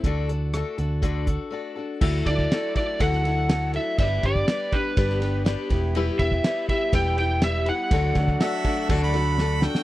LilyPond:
<<
  \new Staff \with { instrumentName = "Harmonica" } { \time 4/4 \key d \mixolydian \tempo 4 = 122 r1 | r1 | r1 | r1 |
r4 e''4 a''16 b''4~ b''16 g''8 | }
  \new Staff \with { instrumentName = "Electric slide guitar" } { \time 4/4 \key d \mixolydian r1 | r8 d''4 d''8 fis''4. e''8 | e''8 d''4 b'4. r4 | r8 e''4 e''8 g''8 g''8 e''8 fis''8~ |
fis''2. r4 | }
  \new Staff \with { instrumentName = "Steel-string acoustic guitar" } { \time 4/4 \key d \mixolydian <d a d' fis' a'>8 <d' fis' a'>8 <a d' fis' a'>8 <d' fis' a'>8 <d a d' fis' a'>8 <d' fis' a'>8 <a d' fis' a'>8 <d' fis' a'>8 | <d a e' fis' a'>8 <e' fis' a'>8 <a e' fis' a'>8 <e' fis' a'>8 <d a e' fis' a'>8 <e' fis' a'>8 <a e' fis' a'>8 <e' fis' a'>8 | <g d' g' b'>8 <d' g' b'>8 <g d' g' b'>8 <d' g' b'>8 <g d' g' b'>8 <d' g' b'>8 <g d' g' b'>8 <e' g' b'>8 | <e g e' g' b'>8 <e' g' b'>8 <g e' g' b'>8 <e' g' b'>8 <e g e' g' b'>8 <e' g' b'>8 <g e' g' b'>8 <e' g' b'>8 |
<d a d' fis' a'>8 <d' fis' a'>8 <a d' fis' a'>8 <d' fis' a'>8 <d a d' fis' a'>8 <d' fis' a'>8 <a d' fis' a'>8 <d' fis' a'>8 | }
  \new Staff \with { instrumentName = "Tonewheel organ" } { \time 4/4 \key d \mixolydian r1 | <fis a d' e'>1 | <g b d' g'>2.~ <g b d' g'>8 <g b e' g'>8~ | <g b e' g'>1 |
<fis a d' fis'>1 | }
  \new Staff \with { instrumentName = "Picked electric bass" } { \clef bass \time 4/4 \key d \mixolydian d,4. d,4. r4 | d,8 d,8 r4 d,2 | g,,8 g,,8 r4 g,,4. e,,8~ | e,,8 e,,8 r4 e,,2 |
d,8 d,8 r4 d,2 | }
  \new DrumStaff \with { instrumentName = "Drums" } \drummode { \time 4/4 <hh bd>8 hh8 <hh ss>8 hh8 <hh bd>8 <hh bd>8 r4 | <cymc bd>8 <bd cymr>16 bd16 <cymr sn>8 <bd cymr>8 <bd cymr>16 sn16 cymr8 <cymr sn>8 cymr8 | <bd cymr>8 <bd cymr>16 bd16 <cymr sn>8 <bd cymr>8 <bd cymr>16 sn16 <cymr sn>8 <cymr sn>8 <bd cymr>8 | cymr8 <bd cymr>16 bd16 <cymr sn>8 <bd cymr>8 <bd cymr>8 <cymr sn>8 <cymr sn>8 cymr8 |
<bd cymr>8 <bd cymr>16 bd16 <cymr sn>8 <bd cymr>8 <bd cymr>16 sn16 <cymr sn>8 sn8 sn16 sn16 | }
>>